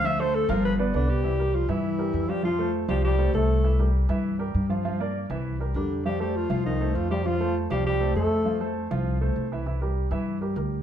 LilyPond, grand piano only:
\new Staff \with { instrumentName = "Grand piano" } { \time 4/4 \key c \mixolydian \tempo 4 = 199 <f f' f''>8 <a a' c''>4 <f f' f''>4 <b b' d''>8 <b b' d''>4 | <e e' e''>8 <g g' bes'>4 <e e' e''>4 <g g' bes'>4 <f f' f''>8 | <f f' f''>8 <a a' c''>4 <f f' f''>4 <a a' c''>8 <a a' c''>4 | <e e' e''>8 <g g' bes'>4 <e e' e''>4 <g g' bes'>4 <f f' f''>8 |
<f f' f''>8 <bes bes' d''>4 <e e' e''>4 <g g' bes'>8 <g g' bes'>4 | <f f' f''>8 <a a' c''>4 <f f' f''>4 <a a' c''>4 <f f' f''>8 | <f f' f''>8 <a a' c''>4 <f f' f''>4 <a a' c''>8 <a a' c''>4 | <f f' f''>8 <a a' c''>4 <f f' f''>4 <a a' c''>4 <e e' e''>8 |
<e e' e''>8 <g g' bes'>4 <e e' e''>4 <g g' bes'>8 <g g' bes'>4 | }